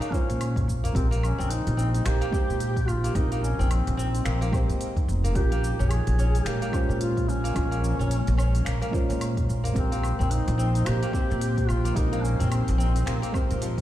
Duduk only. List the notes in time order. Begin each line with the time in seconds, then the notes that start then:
Already playing: D#4
0.13 C#4
0.96 C4
1.24 C#4
1.50 D#4
2.06 G4
2.88 F4
3.15 D#4
3.42 C#4
3.70 C4
5.35 G4
5.90 G#4
6.46 G4
7.01 F4
7.29 C#4
9.77 C4
10.31 D#4
10.87 G4
11.69 F4
11.96 D#4
12.24 C#4
12.51 C4